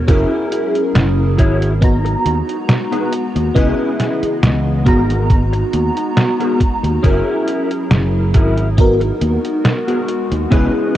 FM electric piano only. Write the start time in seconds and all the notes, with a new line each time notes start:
0.07 C#4 E4 G#4 A#4
1.81 B3 D#4 F#4 A#5
3.54 B3 E4 G#4 D#5
4.85 B3 D#4 F#4 A#5
7.02 C#4 E4 G#4 A#4
8.77 B3 D#4 F#4 A#4
10.51 B3 E4 G#4 D#5